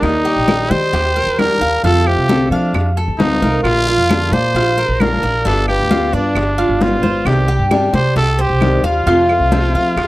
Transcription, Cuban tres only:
0.00 0.24 A#4 medium
0.25 0.69 G4 medium
0.71 0.93 D#5 medium
0.93 1.15 G4 medium
1.16 1.60 A#4 medium
1.61 1.83 F5 medium
1.84 2.28 F4 medium
2.29 2.51 A4 medium
2.52 2.96 F5 medium
2.97 3.41 A4 medium
3.42 3.86 A#4 medium
3.88 4.31 F4 medium
4.33 4.54 D5 medium
4.56 4.77 F4 medium
4.78 5.22 A#4 medium
5.23 5.45 D5 medium
5.45 5.89 D4 medium
5.91 6.13 F4 medium
6.13 6.57 D5 medium
6.58 7.02 F4 medium
7.03 7.47 C5 medium
7.48 7.92 G4 medium
7.94 8.16 D5 medium
8.16 8.38 G4 medium
8.39 8.83 C5 medium
8.84 9.06 F5 medium
9.07 9.51 F4 medium
9.52 9.74 A4 medium
9.75 10.07 F5 medium

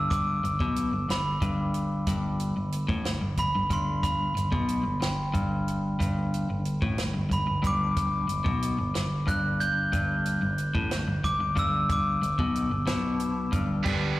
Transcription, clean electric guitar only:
0.00 0.43 G2 medium
0.44 0.60 G2 medium
0.61 0.92 B2 medium
0.93 1.08 G2 medium
1.09 1.35 G2 medium
1.42 2.06 G2 medium
2.07 2.55 G2 loud
2.57 2.83 G2 medium
2.88 3.04 A2 medium
3.05 3.20 G2 medium
3.21 3.37 G2 medium
3.39 3.54 G2 medium
3.55 3.69 G2 medium
3.70 4.34 G2 medium
4.35 4.52 G2 medium
4.52 4.84 B2 medium
4.83 4.99 G2 medium
5.01 5.28 G2 medium
5.34 5.98 G2 medium
5.99 6.48 G2 loud
6.50 6.76 G2 medium
6.82 6.97 A2 medium
6.98 7.13 G2 medium
7.14 7.28 G2 medium
7.30 7.46 G2 medium
7.47 7.61 G2 medium
7.62 8.26 G2 medium
8.28 8.45 G2 medium
8.44 8.77 B2 medium
8.79 8.93 G2 medium
8.95 9.21 G2 medium
9.27 9.91 G2 medium
9.92 10.41 G2 loud
10.42 10.68 G2 medium
10.75 10.90 A2 medium
10.91 11.06 G2 medium
11.08 11.23 G2 medium
11.24 11.39 G2 medium
11.40 11.55 G2 medium
11.56 12.20 G2 medium
12.22 12.38 G2 medium
12.39 12.70 B2 medium
12.71 12.87 G2 medium
12.87 13.51 B2 medium
13.52 13.84 G2 medium
13.86 14.20 G2 medium

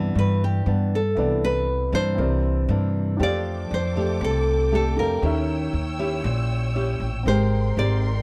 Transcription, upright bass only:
0.00 0.14 G2 medium
0.15 0.63 G2 medium
0.66 1.13 G2 medium
1.16 1.89 C2 medium
1.92 2.16 G2 medium
2.18 2.65 C2 medium
2.69 3.16 G2 loud
3.20 3.67 F2 loud
3.71 4.18 F2 medium
4.21 4.93 C2 loud
4.97 5.20 F2 medium
5.22 5.70 D#2 medium
5.73 6.20 D#2 medium
6.24 6.96 A#1 loud
7.00 7.24 A1 medium
7.26 7.73 G#1 medium
7.77 8.22 G#1 medium

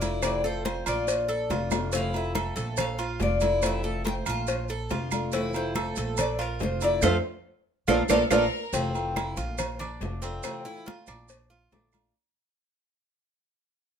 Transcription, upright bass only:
0.00 0.81 F1 medium
0.87 1.46 A#1 medium
1.50 2.50 F1 medium
2.57 3.16 A#1 loud
3.20 4.20 F1 medium
4.26 4.86 A#1 medium
4.91 5.91 F1 medium
5.97 6.57 A#1 loud
6.61 7.00 F1 medium
7.02 7.18 F2 loud
7.88 8.04 A#1 medium
8.09 8.25 A#1 medium
8.30 8.46 A#1 medium
8.73 9.33 F1 loud
9.37 9.97 A#1 loud
10.01 10.39 F1 medium
11.08 11.68 A#1 loud
11.72 12.10 A#1 medium

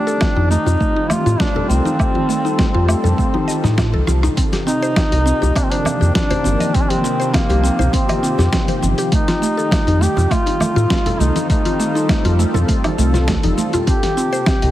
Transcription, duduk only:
0.00 0.47 D4 loud
0.50 1.11 D#4 loud
1.10 1.41 F4 loud
1.40 1.68 D4 loud
1.68 3.73 C4 medium
4.66 5.57 D#4 loud
5.56 5.65 D4 medium
5.63 5.72 C4 medium
5.71 6.14 D4 loud
6.15 6.76 D4 loud
6.75 6.84 C4 loud
6.82 6.91 D4 medium
6.89 7.35 C4 loud
7.34 7.95 A#3 medium
7.93 8.82 C4 medium
9.13 10.04 D#4 loud
10.02 10.33 G4 loud
10.31 11.21 F4 loud
11.20 11.49 D#4 medium
11.49 12.34 D#4 medium
13.88 14.71 G4 loud

